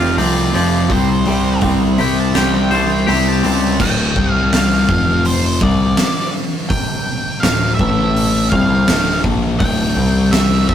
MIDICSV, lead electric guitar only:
0, 0, Header, 1, 2, 480
1, 0, Start_track
1, 0, Key_signature, -1, "minor"
1, 0, Tempo, 725514
1, 597, Time_signature, 4, 2, 24, 8
1, 7110, End_track
2, 0, Start_track
2, 0, Title_t, "Lead electric guitar"
2, 0, Program_c, 0, 29
2, 0, Note_on_c, 0, 77, 85
2, 110, Note_off_c, 0, 77, 0
2, 121, Note_on_c, 0, 74, 88
2, 352, Note_off_c, 0, 74, 0
2, 369, Note_on_c, 0, 74, 96
2, 596, Note_off_c, 0, 74, 0
2, 606, Note_on_c, 0, 72, 94
2, 1068, Note_off_c, 0, 72, 0
2, 1326, Note_on_c, 0, 79, 96
2, 1439, Note_off_c, 0, 79, 0
2, 1456, Note_on_c, 0, 81, 87
2, 1573, Note_off_c, 0, 81, 0
2, 1573, Note_on_c, 0, 79, 94
2, 1677, Note_off_c, 0, 79, 0
2, 1685, Note_on_c, 0, 79, 95
2, 1798, Note_off_c, 0, 79, 0
2, 1820, Note_on_c, 0, 81, 83
2, 1930, Note_off_c, 0, 81, 0
2, 1930, Note_on_c, 0, 79, 92
2, 2041, Note_off_c, 0, 79, 0
2, 2049, Note_on_c, 0, 79, 87
2, 2161, Note_off_c, 0, 79, 0
2, 2173, Note_on_c, 0, 81, 101
2, 2280, Note_off_c, 0, 81, 0
2, 2288, Note_on_c, 0, 81, 96
2, 2517, Note_off_c, 0, 81, 0
2, 2521, Note_on_c, 0, 79, 104
2, 2859, Note_off_c, 0, 79, 0
2, 2859, Note_on_c, 0, 77, 104
2, 2974, Note_off_c, 0, 77, 0
2, 3004, Note_on_c, 0, 77, 98
2, 3479, Note_on_c, 0, 72, 98
2, 3496, Note_off_c, 0, 77, 0
2, 3720, Note_on_c, 0, 74, 75
2, 3727, Note_off_c, 0, 72, 0
2, 4173, Note_off_c, 0, 74, 0
2, 4427, Note_on_c, 0, 79, 113
2, 4896, Note_on_c, 0, 77, 86
2, 4928, Note_off_c, 0, 79, 0
2, 5121, Note_off_c, 0, 77, 0
2, 5124, Note_on_c, 0, 76, 95
2, 5620, Note_off_c, 0, 76, 0
2, 5622, Note_on_c, 0, 77, 81
2, 6084, Note_off_c, 0, 77, 0
2, 6347, Note_on_c, 0, 79, 103
2, 6823, Note_on_c, 0, 76, 90
2, 6847, Note_off_c, 0, 79, 0
2, 7068, Note_off_c, 0, 76, 0
2, 7071, Note_on_c, 0, 74, 89
2, 7110, Note_off_c, 0, 74, 0
2, 7110, End_track
0, 0, End_of_file